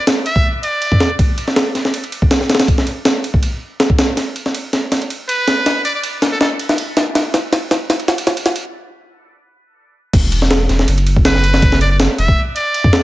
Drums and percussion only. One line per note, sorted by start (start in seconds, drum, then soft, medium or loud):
0.07 snare loud
0.07 ride medium
0.26 ride medium
0.36 kick medium
0.63 ride medium
0.82 ride medium
0.92 kick medium
1.00 snare loud
1.00 ride medium
1.19 kick loud
1.19 ride medium
1.38 ride medium
1.48 snare soft
1.56 snare loud
1.56 ride medium
1.75 snare soft
1.75 ride medium
1.85 snare medium
1.94 ride medium
2.04 ride soft
2.12 ride medium
2.22 kick loud
2.31 snare loud
2.31 ride medium
2.41 snare soft
2.50 snare medium
2.50 ride medium
2.55 snare medium
2.55 ride medium
2.60 snare loud
2.60 ride medium
2.68 kick loud
2.68 ride medium
2.78 snare medium
2.87 ride medium
3.05 snare loud
3.05 ride medium
3.24 ride medium
3.34 kick medium
3.43 ride medium
3.80 snare loud
3.80 ride medium
3.90 kick loud
3.99 snare loud
3.99 ride medium
4.17 snare soft
4.17 ride medium
4.36 ride medium
4.46 snare soft
4.54 ride medium
4.73 snare medium
4.73 ride medium
4.92 snare medium
4.92 ride medium
5.02 ride soft
5.10 ride medium
5.29 ride medium
5.48 snare medium
5.48 ride medium
5.66 snare medium
5.66 ride medium
5.85 ride medium
6.04 ride medium
6.22 snare medium
6.22 ride medium
6.41 snare medium
6.59 ride medium
6.69 snare medium
6.78 ride medium
6.97 snare medium
6.97 ride medium
7.15 snare medium
7.15 ride medium
7.34 snare medium
7.34 ride medium
7.53 snare medium
7.53 ride medium
7.71 snare medium
7.71 ride medium
7.90 snare medium
7.90 ride medium
8.00 ride soft
8.08 snare medium
8.08 ride medium
8.18 ride medium
8.27 snare medium
8.27 ride medium
8.37 ride medium
8.46 snare medium
8.46 ride medium
8.56 ride medium
10.13 kick loud
10.13 crash medium
10.13 ride medium
10.32 ride medium
10.42 snare soft
10.51 snare loud
10.51 ride medium
10.69 snare soft
10.69 ride medium
10.79 snare medium
10.88 ride medium
10.98 ride soft
11.07 ride medium
11.17 kick loud
11.25 snare loud
11.25 ride medium
11.35 snare soft
11.44 ride medium
11.54 snare medium
11.62 kick loud
11.62 ride medium
11.72 snare medium
11.81 ride medium
12.00 snare loud
12.00 ride medium
12.18 ride medium
12.28 kick medium
12.56 ride medium
12.74 ride medium
12.84 kick loud
12.93 snare loud
12.93 ride medium